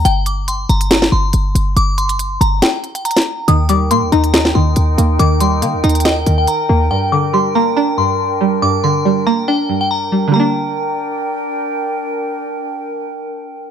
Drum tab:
HH |x---x---x---x-x-x-------x---x---|x---x-x-x---x---x---x-x-xxxx----|x---x---x---x-x-x-------x---x---|x---x---x---xxxxx---x---x-------|
SD |----------------o-o-------------|----------------o---------o-----|----------------o-o-------------|----------------o---------------|

HH |--------------------------------|--------------------------------|--------------------------------|--------------------------------|
SD |--------------------------------|--------------------------------|--------------------------------|--------------------------------|